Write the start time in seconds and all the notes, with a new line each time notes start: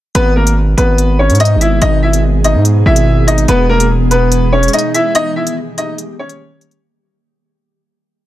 0.15 G#1 B2 G#3 B3 G#4 B4, closed hi-hat
0.36 A#3 A#4
0.47 closed hi-hat
0.77 G#1 B3 B4, closed hi-hat
0.98 closed hi-hat
1.19 C#4 C#5
1.30 G#2, closed hi-hat
1.35 closed hi-hat
1.40 D#4 D#5, closed hi-hat
1.45 closed hi-hat
1.56 G#1
1.61 E4 E5, closed hi-hat
1.82 G#1 D#4 D#5, closed hi-hat
2.03 E4 E5
2.13 closed hi-hat
2.44 D#4 D#5, closed hi-hat
2.55 G#2
2.65 closed hi-hat
2.86 G#1 E4 E5
2.96 closed hi-hat
3.27 D#4 D#5, closed hi-hat
3.38 closed hi-hat
3.48 E1 E3 G#3 B3 B4, closed hi-hat
3.69 A#3 A#4
3.80 closed hi-hat
4.11 B3 B4, closed hi-hat
4.32 closed hi-hat
4.52 C#4 C#5
4.63 closed hi-hat
4.68 closed hi-hat
4.73 D#4 D#5, closed hi-hat
4.79 closed hi-hat
4.94 E4 E5, closed hi-hat
5.15 D#3 G3 A#3 D#4 G4 D#5, closed hi-hat
5.36 E4 E5
5.47 closed hi-hat
5.78 D#4 D#5, closed hi-hat
5.98 closed hi-hat
6.19 C#4 C#5
6.29 closed hi-hat
6.61 closed hi-hat
6.71 closed hi-hat